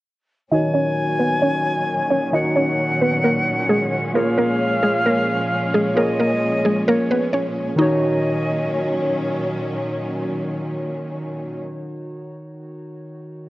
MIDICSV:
0, 0, Header, 1, 5, 480
1, 0, Start_track
1, 0, Key_signature, -6, "minor"
1, 0, Tempo, 454545
1, 542, Time_signature, 4, 2, 24, 8
1, 14245, End_track
2, 0, Start_track
2, 0, Title_t, "Flute"
2, 0, Program_c, 0, 73
2, 546, Note_on_c, 0, 80, 122
2, 2422, Note_off_c, 0, 80, 0
2, 2460, Note_on_c, 0, 78, 107
2, 4339, Note_off_c, 0, 78, 0
2, 4379, Note_on_c, 0, 77, 127
2, 6258, Note_off_c, 0, 77, 0
2, 6299, Note_on_c, 0, 75, 111
2, 7218, Note_off_c, 0, 75, 0
2, 7264, Note_on_c, 0, 73, 83
2, 7714, Note_off_c, 0, 73, 0
2, 8220, Note_on_c, 0, 75, 94
2, 9619, Note_off_c, 0, 75, 0
2, 14245, End_track
3, 0, Start_track
3, 0, Title_t, "Synth keys"
3, 0, Program_c, 1, 88
3, 540, Note_on_c, 1, 51, 61
3, 549, Note_on_c, 1, 63, 59
3, 559, Note_on_c, 1, 66, 58
3, 569, Note_on_c, 1, 73, 73
3, 735, Control_c, 1, 64, 127
3, 2423, Note_off_c, 1, 51, 0
3, 2427, Note_off_c, 1, 63, 0
3, 2432, Note_off_c, 1, 66, 0
3, 2437, Note_off_c, 1, 73, 0
3, 2451, Note_on_c, 1, 51, 63
3, 2460, Note_on_c, 1, 63, 63
3, 2470, Note_on_c, 1, 66, 58
3, 2479, Note_on_c, 1, 73, 70
3, 4338, Note_off_c, 1, 51, 0
3, 4343, Note_off_c, 1, 63, 0
3, 4347, Note_off_c, 1, 66, 0
3, 4352, Note_off_c, 1, 73, 0
3, 4364, Note_on_c, 1, 58, 67
3, 4374, Note_on_c, 1, 65, 63
3, 4384, Note_on_c, 1, 68, 62
3, 4393, Note_on_c, 1, 73, 80
3, 4395, Control_c, 1, 64, 0
3, 4587, Control_c, 1, 64, 127
3, 6254, Note_off_c, 1, 58, 0
3, 6259, Note_off_c, 1, 65, 0
3, 6264, Note_off_c, 1, 68, 0
3, 6269, Note_off_c, 1, 73, 0
3, 6272, Note_on_c, 1, 58, 60
3, 6282, Note_on_c, 1, 65, 61
3, 6292, Note_on_c, 1, 68, 66
3, 6302, Note_on_c, 1, 73, 76
3, 8168, Note_off_c, 1, 58, 0
3, 8173, Note_off_c, 1, 65, 0
3, 8178, Note_off_c, 1, 68, 0
3, 8183, Note_off_c, 1, 73, 0
3, 8192, Note_on_c, 1, 51, 81
3, 8211, Note_on_c, 1, 63, 74
3, 8230, Note_on_c, 1, 66, 75
3, 8234, Control_c, 1, 64, 0
3, 8249, Note_on_c, 1, 73, 93
3, 8391, Control_c, 1, 64, 127
3, 12208, Note_off_c, 1, 51, 0
3, 12226, Note_off_c, 1, 63, 0
3, 12246, Note_off_c, 1, 66, 0
3, 12265, Note_off_c, 1, 73, 0
3, 14245, End_track
4, 0, Start_track
4, 0, Title_t, "Synth pluck"
4, 0, Program_c, 2, 84
4, 542, Note_on_c, 2, 75, 92
4, 550, Note_on_c, 2, 63, 68
4, 753, Note_off_c, 2, 75, 0
4, 758, Note_off_c, 2, 63, 0
4, 780, Note_on_c, 2, 73, 88
4, 789, Note_on_c, 2, 61, 63
4, 993, Note_off_c, 2, 73, 0
4, 997, Note_off_c, 2, 61, 0
4, 1260, Note_on_c, 2, 71, 73
4, 1269, Note_on_c, 2, 59, 62
4, 1472, Note_off_c, 2, 71, 0
4, 1477, Note_off_c, 2, 59, 0
4, 1499, Note_on_c, 2, 73, 82
4, 1509, Note_on_c, 2, 61, 64
4, 2178, Note_off_c, 2, 73, 0
4, 2183, Note_off_c, 2, 61, 0
4, 2222, Note_on_c, 2, 73, 81
4, 2230, Note_on_c, 2, 61, 61
4, 2433, Note_off_c, 2, 73, 0
4, 2438, Note_off_c, 2, 61, 0
4, 2462, Note_on_c, 2, 75, 93
4, 2471, Note_on_c, 2, 63, 67
4, 2674, Note_off_c, 2, 75, 0
4, 2678, Note_off_c, 2, 63, 0
4, 2699, Note_on_c, 2, 73, 79
4, 2708, Note_on_c, 2, 61, 67
4, 2912, Note_off_c, 2, 73, 0
4, 2917, Note_off_c, 2, 61, 0
4, 3181, Note_on_c, 2, 71, 77
4, 3189, Note_on_c, 2, 59, 60
4, 3393, Note_off_c, 2, 71, 0
4, 3397, Note_off_c, 2, 59, 0
4, 3419, Note_on_c, 2, 70, 86
4, 3428, Note_on_c, 2, 58, 71
4, 3872, Note_off_c, 2, 70, 0
4, 3876, Note_off_c, 2, 58, 0
4, 3901, Note_on_c, 2, 68, 87
4, 3910, Note_on_c, 2, 56, 66
4, 4113, Note_off_c, 2, 68, 0
4, 4118, Note_off_c, 2, 56, 0
4, 4382, Note_on_c, 2, 70, 77
4, 4391, Note_on_c, 2, 58, 58
4, 4594, Note_off_c, 2, 70, 0
4, 4599, Note_off_c, 2, 58, 0
4, 4621, Note_on_c, 2, 70, 83
4, 4630, Note_on_c, 2, 58, 72
4, 4833, Note_off_c, 2, 70, 0
4, 4838, Note_off_c, 2, 58, 0
4, 5100, Note_on_c, 2, 68, 78
4, 5109, Note_on_c, 2, 56, 57
4, 5313, Note_off_c, 2, 68, 0
4, 5317, Note_off_c, 2, 56, 0
4, 5343, Note_on_c, 2, 70, 82
4, 5351, Note_on_c, 2, 58, 63
4, 6020, Note_off_c, 2, 70, 0
4, 6024, Note_off_c, 2, 58, 0
4, 6064, Note_on_c, 2, 68, 83
4, 6073, Note_on_c, 2, 56, 64
4, 6275, Note_off_c, 2, 68, 0
4, 6280, Note_off_c, 2, 56, 0
4, 6302, Note_on_c, 2, 70, 83
4, 6310, Note_on_c, 2, 58, 60
4, 6513, Note_off_c, 2, 70, 0
4, 6518, Note_off_c, 2, 58, 0
4, 6543, Note_on_c, 2, 70, 73
4, 6551, Note_on_c, 2, 58, 65
4, 6754, Note_off_c, 2, 70, 0
4, 6759, Note_off_c, 2, 58, 0
4, 7021, Note_on_c, 2, 68, 72
4, 7030, Note_on_c, 2, 56, 64
4, 7233, Note_off_c, 2, 68, 0
4, 7238, Note_off_c, 2, 56, 0
4, 7264, Note_on_c, 2, 70, 96
4, 7272, Note_on_c, 2, 58, 76
4, 7474, Note_off_c, 2, 70, 0
4, 7479, Note_off_c, 2, 58, 0
4, 7505, Note_on_c, 2, 71, 80
4, 7512, Note_on_c, 2, 59, 65
4, 7715, Note_off_c, 2, 71, 0
4, 7719, Note_off_c, 2, 59, 0
4, 7740, Note_on_c, 2, 73, 75
4, 7749, Note_on_c, 2, 61, 61
4, 8192, Note_off_c, 2, 73, 0
4, 8197, Note_off_c, 2, 61, 0
4, 8222, Note_on_c, 2, 63, 80
4, 9620, Note_off_c, 2, 63, 0
4, 14245, End_track
5, 0, Start_track
5, 0, Title_t, "String section"
5, 0, Program_c, 3, 48
5, 541, Note_on_c, 3, 46, 77
5, 541, Note_on_c, 3, 61, 85
5, 542, Note_on_c, 3, 51, 71
5, 542, Note_on_c, 3, 54, 68
5, 4343, Note_off_c, 3, 51, 0
5, 4343, Note_off_c, 3, 54, 0
5, 4378, Note_on_c, 3, 56, 74
5, 4379, Note_on_c, 3, 53, 71
5, 8179, Note_off_c, 3, 46, 0
5, 8179, Note_off_c, 3, 61, 0
5, 8182, Note_off_c, 3, 53, 0
5, 8182, Note_off_c, 3, 56, 0
5, 8220, Note_on_c, 3, 61, 85
5, 8221, Note_on_c, 3, 46, 76
5, 8221, Note_on_c, 3, 51, 72
5, 8221, Note_on_c, 3, 54, 71
5, 12236, Note_off_c, 3, 51, 0
5, 12236, Note_off_c, 3, 61, 0
5, 12237, Note_off_c, 3, 46, 0
5, 12237, Note_off_c, 3, 54, 0
5, 14245, End_track
0, 0, End_of_file